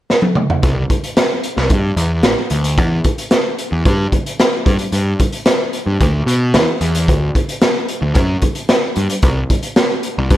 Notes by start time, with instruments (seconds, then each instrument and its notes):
0.10 snare
0.22 high tom
0.35 mid tom
0.50 floor tom
0.63 picked electric bass C2, kick, closed hi-hat
0.90 kick, closed hi-hat
1.04 closed hi-hat
1.17 snare, closed hi-hat
1.43 closed hi-hat
1.57 picked electric bass C2, snare
1.70 picked electric bass G2, kick, closed hi-hat
1.96 picked electric bass E2, closed hi-hat
2.23 picked electric bass A1, snare, closed hi-hat
2.50 picked electric bass D2, closed hi-hat
2.64 closed hi-hat
2.78 picked electric bass E2, kick, closed hi-hat
3.04 kick, closed hi-hat
3.18 closed hi-hat
3.31 snare, closed hi-hat
3.58 closed hi-hat
3.72 picked electric bass E2
3.85 picked electric bass G2, kick, closed hi-hat
4.12 kick, closed hi-hat
4.26 closed hi-hat
4.39 snare, closed hi-hat
4.66 picked electric bass G2, kick, closed hi-hat
4.79 closed hi-hat
4.92 picked electric bass G2, closed hi-hat
5.20 kick, closed hi-hat
5.33 closed hi-hat
5.46 snare, closed hi-hat
5.73 closed hi-hat
5.86 picked electric bass G2
6.01 picked electric bass D2, kick, closed hi-hat
6.26 picked electric bass B2, closed hi-hat
6.54 picked electric bass E2, snare, closed hi-hat
6.81 picked electric bass E2, closed hi-hat
6.95 closed hi-hat
7.08 picked electric bass D2, kick, closed hi-hat
7.35 kick, closed hi-hat
7.49 closed hi-hat
7.61 snare, closed hi-hat
7.88 closed hi-hat
8.02 picked electric bass D2
8.15 picked electric bass F#2, kick, closed hi-hat
8.42 kick, closed hi-hat
8.55 closed hi-hat
8.69 snare, closed hi-hat
8.96 picked electric bass G2, closed hi-hat
9.10 closed hi-hat
9.22 picked electric bass C2, kick, closed hi-hat
9.50 kick, closed hi-hat
9.63 closed hi-hat
9.76 snare, closed hi-hat
10.03 closed hi-hat
10.18 picked electric bass C2
10.30 picked electric bass G2, kick, closed hi-hat